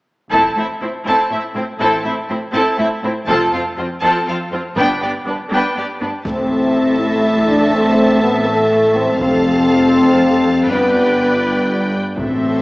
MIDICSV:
0, 0, Header, 1, 10, 480
1, 0, Start_track
1, 0, Key_signature, 0, "minor"
1, 0, Tempo, 493827
1, 313, Time_signature, 6, 3, 24, 8
1, 12266, End_track
2, 0, Start_track
2, 0, Title_t, "Violin section"
2, 0, Program_c, 0, 48
2, 6078, Note_on_c, 0, 81, 41
2, 8917, Note_off_c, 0, 81, 0
2, 8949, Note_on_c, 0, 81, 49
2, 10362, Note_off_c, 0, 81, 0
2, 10401, Note_on_c, 0, 79, 39
2, 11618, Note_off_c, 0, 79, 0
2, 11840, Note_on_c, 0, 76, 43
2, 12266, Note_off_c, 0, 76, 0
2, 12266, End_track
3, 0, Start_track
3, 0, Title_t, "Violin section"
3, 0, Program_c, 1, 48
3, 298, Note_on_c, 1, 81, 34
3, 300, Note_on_c, 1, 69, 41
3, 528, Note_off_c, 1, 81, 0
3, 529, Note_off_c, 1, 69, 0
3, 558, Note_on_c, 1, 64, 25
3, 559, Note_on_c, 1, 76, 25
3, 636, Note_off_c, 1, 64, 0
3, 637, Note_off_c, 1, 76, 0
3, 795, Note_on_c, 1, 60, 27
3, 801, Note_on_c, 1, 72, 22
3, 873, Note_off_c, 1, 60, 0
3, 879, Note_off_c, 1, 72, 0
3, 1041, Note_on_c, 1, 69, 34
3, 1044, Note_on_c, 1, 81, 35
3, 1260, Note_off_c, 1, 69, 0
3, 1262, Note_off_c, 1, 81, 0
3, 1278, Note_on_c, 1, 76, 28
3, 1279, Note_on_c, 1, 64, 31
3, 1355, Note_off_c, 1, 76, 0
3, 1357, Note_off_c, 1, 64, 0
3, 1515, Note_on_c, 1, 60, 34
3, 1515, Note_on_c, 1, 72, 32
3, 1593, Note_off_c, 1, 60, 0
3, 1593, Note_off_c, 1, 72, 0
3, 1744, Note_on_c, 1, 69, 42
3, 1750, Note_on_c, 1, 81, 41
3, 1972, Note_off_c, 1, 69, 0
3, 1975, Note_off_c, 1, 81, 0
3, 1986, Note_on_c, 1, 64, 31
3, 1989, Note_on_c, 1, 76, 25
3, 2064, Note_off_c, 1, 64, 0
3, 2067, Note_off_c, 1, 76, 0
3, 2220, Note_on_c, 1, 60, 31
3, 2227, Note_on_c, 1, 72, 30
3, 2298, Note_off_c, 1, 60, 0
3, 2304, Note_off_c, 1, 72, 0
3, 2459, Note_on_c, 1, 69, 43
3, 2461, Note_on_c, 1, 81, 44
3, 2689, Note_off_c, 1, 69, 0
3, 2690, Note_off_c, 1, 81, 0
3, 2702, Note_on_c, 1, 76, 36
3, 2704, Note_on_c, 1, 64, 31
3, 2780, Note_off_c, 1, 76, 0
3, 2781, Note_off_c, 1, 64, 0
3, 2945, Note_on_c, 1, 72, 33
3, 2946, Note_on_c, 1, 60, 37
3, 3022, Note_off_c, 1, 72, 0
3, 3024, Note_off_c, 1, 60, 0
3, 3174, Note_on_c, 1, 81, 48
3, 3178, Note_on_c, 1, 69, 46
3, 3406, Note_off_c, 1, 81, 0
3, 3408, Note_off_c, 1, 69, 0
3, 3428, Note_on_c, 1, 77, 36
3, 3432, Note_on_c, 1, 65, 30
3, 3506, Note_off_c, 1, 77, 0
3, 3510, Note_off_c, 1, 65, 0
3, 3668, Note_on_c, 1, 72, 32
3, 3670, Note_on_c, 1, 60, 34
3, 3746, Note_off_c, 1, 72, 0
3, 3748, Note_off_c, 1, 60, 0
3, 3903, Note_on_c, 1, 81, 48
3, 3906, Note_on_c, 1, 69, 46
3, 4131, Note_off_c, 1, 81, 0
3, 4132, Note_off_c, 1, 69, 0
3, 4155, Note_on_c, 1, 65, 36
3, 4158, Note_on_c, 1, 77, 38
3, 4233, Note_off_c, 1, 65, 0
3, 4236, Note_off_c, 1, 77, 0
3, 4393, Note_on_c, 1, 60, 32
3, 4395, Note_on_c, 1, 72, 34
3, 4471, Note_off_c, 1, 60, 0
3, 4473, Note_off_c, 1, 72, 0
3, 4632, Note_on_c, 1, 71, 45
3, 4635, Note_on_c, 1, 79, 49
3, 4856, Note_off_c, 1, 71, 0
3, 4857, Note_off_c, 1, 79, 0
3, 4876, Note_on_c, 1, 67, 32
3, 4877, Note_on_c, 1, 74, 34
3, 4954, Note_off_c, 1, 67, 0
3, 4955, Note_off_c, 1, 74, 0
3, 5130, Note_on_c, 1, 62, 30
3, 5134, Note_on_c, 1, 71, 29
3, 5208, Note_off_c, 1, 62, 0
3, 5212, Note_off_c, 1, 71, 0
3, 5372, Note_on_c, 1, 79, 43
3, 5376, Note_on_c, 1, 71, 41
3, 5587, Note_off_c, 1, 79, 0
3, 5588, Note_off_c, 1, 71, 0
3, 5612, Note_on_c, 1, 74, 34
3, 5615, Note_on_c, 1, 67, 34
3, 5690, Note_off_c, 1, 74, 0
3, 5693, Note_off_c, 1, 67, 0
3, 5855, Note_on_c, 1, 62, 29
3, 5856, Note_on_c, 1, 71, 28
3, 5933, Note_off_c, 1, 62, 0
3, 5934, Note_off_c, 1, 71, 0
3, 6100, Note_on_c, 1, 76, 38
3, 8928, Note_off_c, 1, 76, 0
3, 8963, Note_on_c, 1, 77, 50
3, 10398, Note_off_c, 1, 77, 0
3, 10401, Note_on_c, 1, 74, 39
3, 11643, Note_off_c, 1, 74, 0
3, 11838, Note_on_c, 1, 72, 46
3, 12266, Note_off_c, 1, 72, 0
3, 12266, End_track
4, 0, Start_track
4, 0, Title_t, "Viola section"
4, 0, Program_c, 2, 48
4, 317, Note_on_c, 2, 60, 31
4, 319, Note_on_c, 2, 64, 35
4, 539, Note_off_c, 2, 60, 0
4, 539, Note_off_c, 2, 64, 0
4, 556, Note_on_c, 2, 64, 26
4, 557, Note_on_c, 2, 60, 22
4, 634, Note_off_c, 2, 64, 0
4, 635, Note_off_c, 2, 60, 0
4, 797, Note_on_c, 2, 60, 31
4, 797, Note_on_c, 2, 64, 26
4, 874, Note_off_c, 2, 64, 0
4, 875, Note_off_c, 2, 60, 0
4, 1031, Note_on_c, 2, 64, 35
4, 1035, Note_on_c, 2, 60, 35
4, 1256, Note_off_c, 2, 64, 0
4, 1257, Note_off_c, 2, 60, 0
4, 1282, Note_on_c, 2, 60, 27
4, 1282, Note_on_c, 2, 64, 27
4, 1359, Note_off_c, 2, 64, 0
4, 1360, Note_off_c, 2, 60, 0
4, 1511, Note_on_c, 2, 64, 29
4, 1515, Note_on_c, 2, 60, 32
4, 1589, Note_off_c, 2, 64, 0
4, 1593, Note_off_c, 2, 60, 0
4, 1747, Note_on_c, 2, 60, 39
4, 1749, Note_on_c, 2, 64, 36
4, 1973, Note_off_c, 2, 60, 0
4, 1974, Note_off_c, 2, 64, 0
4, 1991, Note_on_c, 2, 64, 28
4, 1993, Note_on_c, 2, 60, 33
4, 2068, Note_off_c, 2, 64, 0
4, 2070, Note_off_c, 2, 60, 0
4, 2234, Note_on_c, 2, 60, 32
4, 2237, Note_on_c, 2, 64, 32
4, 2311, Note_off_c, 2, 60, 0
4, 2315, Note_off_c, 2, 64, 0
4, 2473, Note_on_c, 2, 64, 40
4, 2476, Note_on_c, 2, 60, 41
4, 2696, Note_off_c, 2, 64, 0
4, 2698, Note_off_c, 2, 60, 0
4, 2710, Note_on_c, 2, 60, 41
4, 2713, Note_on_c, 2, 64, 31
4, 2788, Note_off_c, 2, 60, 0
4, 2791, Note_off_c, 2, 64, 0
4, 2954, Note_on_c, 2, 64, 36
4, 2955, Note_on_c, 2, 60, 34
4, 3032, Note_off_c, 2, 64, 0
4, 3033, Note_off_c, 2, 60, 0
4, 3197, Note_on_c, 2, 60, 44
4, 3197, Note_on_c, 2, 65, 45
4, 3418, Note_off_c, 2, 60, 0
4, 3418, Note_off_c, 2, 65, 0
4, 3440, Note_on_c, 2, 60, 36
4, 3440, Note_on_c, 2, 65, 35
4, 3518, Note_off_c, 2, 60, 0
4, 3518, Note_off_c, 2, 65, 0
4, 3671, Note_on_c, 2, 65, 38
4, 3673, Note_on_c, 2, 60, 37
4, 3749, Note_off_c, 2, 65, 0
4, 3751, Note_off_c, 2, 60, 0
4, 3907, Note_on_c, 2, 60, 45
4, 3909, Note_on_c, 2, 65, 42
4, 4133, Note_off_c, 2, 60, 0
4, 4134, Note_off_c, 2, 65, 0
4, 4161, Note_on_c, 2, 60, 42
4, 4162, Note_on_c, 2, 65, 37
4, 4239, Note_off_c, 2, 60, 0
4, 4240, Note_off_c, 2, 65, 0
4, 4400, Note_on_c, 2, 60, 34
4, 4402, Note_on_c, 2, 65, 36
4, 4478, Note_off_c, 2, 60, 0
4, 4480, Note_off_c, 2, 65, 0
4, 4638, Note_on_c, 2, 59, 50
4, 4640, Note_on_c, 2, 62, 43
4, 4859, Note_off_c, 2, 59, 0
4, 4860, Note_off_c, 2, 62, 0
4, 4879, Note_on_c, 2, 62, 33
4, 4880, Note_on_c, 2, 59, 33
4, 4957, Note_off_c, 2, 62, 0
4, 4958, Note_off_c, 2, 59, 0
4, 5105, Note_on_c, 2, 59, 30
4, 5108, Note_on_c, 2, 62, 32
4, 5183, Note_off_c, 2, 59, 0
4, 5186, Note_off_c, 2, 62, 0
4, 5354, Note_on_c, 2, 59, 41
4, 5358, Note_on_c, 2, 62, 44
4, 5577, Note_off_c, 2, 59, 0
4, 5579, Note_off_c, 2, 62, 0
4, 5595, Note_on_c, 2, 59, 34
4, 5596, Note_on_c, 2, 62, 31
4, 5673, Note_off_c, 2, 59, 0
4, 5673, Note_off_c, 2, 62, 0
4, 5836, Note_on_c, 2, 62, 27
4, 5838, Note_on_c, 2, 59, 33
4, 5914, Note_off_c, 2, 62, 0
4, 5916, Note_off_c, 2, 59, 0
4, 6082, Note_on_c, 2, 69, 40
4, 8919, Note_off_c, 2, 69, 0
4, 8952, Note_on_c, 2, 69, 52
4, 10364, Note_off_c, 2, 69, 0
4, 10394, Note_on_c, 2, 71, 36
4, 11639, Note_off_c, 2, 71, 0
4, 11833, Note_on_c, 2, 69, 43
4, 12266, Note_off_c, 2, 69, 0
4, 12266, End_track
5, 0, Start_track
5, 0, Title_t, "French horn section"
5, 0, Program_c, 3, 60
5, 6088, Note_on_c, 3, 60, 52
5, 6762, Note_off_c, 3, 60, 0
5, 6794, Note_on_c, 3, 64, 54
5, 7264, Note_off_c, 3, 64, 0
5, 7275, Note_on_c, 3, 62, 59
5, 7509, Note_off_c, 3, 62, 0
5, 7525, Note_on_c, 3, 60, 60
5, 7992, Note_on_c, 3, 59, 59
5, 7999, Note_off_c, 3, 60, 0
5, 8228, Note_off_c, 3, 59, 0
5, 8230, Note_on_c, 3, 57, 60
5, 8708, Note_on_c, 3, 60, 60
5, 8711, Note_off_c, 3, 57, 0
5, 8951, Note_off_c, 3, 60, 0
5, 8961, Note_on_c, 3, 60, 77
5, 10369, Note_off_c, 3, 60, 0
5, 10388, Note_on_c, 3, 59, 50
5, 11591, Note_off_c, 3, 59, 0
5, 11817, Note_on_c, 3, 60, 51
5, 12266, Note_off_c, 3, 60, 0
5, 12266, End_track
6, 0, Start_track
6, 0, Title_t, "Timpani"
6, 0, Program_c, 4, 47
6, 11833, Note_on_c, 4, 45, 48
6, 12266, Note_off_c, 4, 45, 0
6, 12266, End_track
7, 0, Start_track
7, 0, Title_t, "Cello section"
7, 0, Program_c, 5, 48
7, 313, Note_on_c, 5, 45, 34
7, 391, Note_off_c, 5, 45, 0
7, 549, Note_on_c, 5, 45, 27
7, 627, Note_off_c, 5, 45, 0
7, 792, Note_on_c, 5, 45, 28
7, 870, Note_off_c, 5, 45, 0
7, 1026, Note_on_c, 5, 45, 35
7, 1104, Note_off_c, 5, 45, 0
7, 1264, Note_on_c, 5, 45, 30
7, 1342, Note_off_c, 5, 45, 0
7, 1502, Note_on_c, 5, 45, 31
7, 1580, Note_off_c, 5, 45, 0
7, 1744, Note_on_c, 5, 45, 39
7, 1821, Note_off_c, 5, 45, 0
7, 1990, Note_on_c, 5, 45, 30
7, 2067, Note_off_c, 5, 45, 0
7, 2225, Note_on_c, 5, 45, 31
7, 2303, Note_off_c, 5, 45, 0
7, 2464, Note_on_c, 5, 45, 42
7, 2542, Note_off_c, 5, 45, 0
7, 2705, Note_on_c, 5, 45, 37
7, 2783, Note_off_c, 5, 45, 0
7, 2947, Note_on_c, 5, 45, 37
7, 3025, Note_off_c, 5, 45, 0
7, 3187, Note_on_c, 5, 41, 49
7, 3264, Note_off_c, 5, 41, 0
7, 3429, Note_on_c, 5, 41, 34
7, 3506, Note_off_c, 5, 41, 0
7, 3672, Note_on_c, 5, 41, 36
7, 3749, Note_off_c, 5, 41, 0
7, 3907, Note_on_c, 5, 41, 46
7, 3984, Note_off_c, 5, 41, 0
7, 4150, Note_on_c, 5, 41, 35
7, 4228, Note_off_c, 5, 41, 0
7, 4391, Note_on_c, 5, 41, 39
7, 4468, Note_off_c, 5, 41, 0
7, 4629, Note_on_c, 5, 43, 49
7, 4707, Note_off_c, 5, 43, 0
7, 4866, Note_on_c, 5, 43, 33
7, 4944, Note_off_c, 5, 43, 0
7, 5113, Note_on_c, 5, 43, 30
7, 5191, Note_off_c, 5, 43, 0
7, 5354, Note_on_c, 5, 43, 44
7, 5432, Note_off_c, 5, 43, 0
7, 5598, Note_on_c, 5, 43, 29
7, 5676, Note_off_c, 5, 43, 0
7, 5840, Note_on_c, 5, 43, 31
7, 5918, Note_off_c, 5, 43, 0
7, 6080, Note_on_c, 5, 45, 40
7, 8918, Note_off_c, 5, 45, 0
7, 8955, Note_on_c, 5, 41, 49
7, 10366, Note_off_c, 5, 41, 0
7, 10395, Note_on_c, 5, 43, 40
7, 11615, Note_off_c, 5, 43, 0
7, 11831, Note_on_c, 5, 45, 44
7, 12266, Note_off_c, 5, 45, 0
7, 12266, End_track
8, 0, Start_track
8, 0, Title_t, "Double bass section"
8, 0, Program_c, 6, 48
8, 307, Note_on_c, 6, 33, 35
8, 533, Note_off_c, 6, 33, 0
8, 1747, Note_on_c, 6, 33, 38
8, 1973, Note_off_c, 6, 33, 0
8, 3195, Note_on_c, 6, 29, 50
8, 3417, Note_off_c, 6, 29, 0
8, 4639, Note_on_c, 6, 31, 49
8, 4860, Note_off_c, 6, 31, 0
8, 6081, Note_on_c, 6, 33, 37
8, 8918, Note_off_c, 6, 33, 0
8, 8949, Note_on_c, 6, 29, 54
8, 10362, Note_off_c, 6, 29, 0
8, 10392, Note_on_c, 6, 31, 41
8, 11613, Note_off_c, 6, 31, 0
8, 11829, Note_on_c, 6, 33, 43
8, 12266, Note_off_c, 6, 33, 0
8, 12266, End_track
9, 0, Start_track
9, 0, Title_t, "Impact"
9, 0, Program_c, 7, 103
9, 6076, Note_on_c, 7, 60, 34
9, 7515, Note_off_c, 7, 60, 0
9, 12266, End_track
10, 0, Start_track
10, 0, Title_t, "Taiko and cinematic ensemble drums"
10, 313, Note_on_c, 9, 41, 30
10, 410, Note_off_c, 9, 41, 0
10, 3193, Note_on_c, 9, 41, 37
10, 3290, Note_off_c, 9, 41, 0
10, 6079, Note_on_c, 9, 41, 41
10, 6177, Note_off_c, 9, 41, 0
10, 7162, Note_on_c, 9, 41, 27
10, 7259, Note_off_c, 9, 41, 0
10, 8956, Note_on_c, 9, 41, 47
10, 9053, Note_off_c, 9, 41, 0
10, 11835, Note_on_c, 9, 41, 43
10, 11932, Note_off_c, 9, 41, 0
10, 12266, End_track
0, 0, End_of_file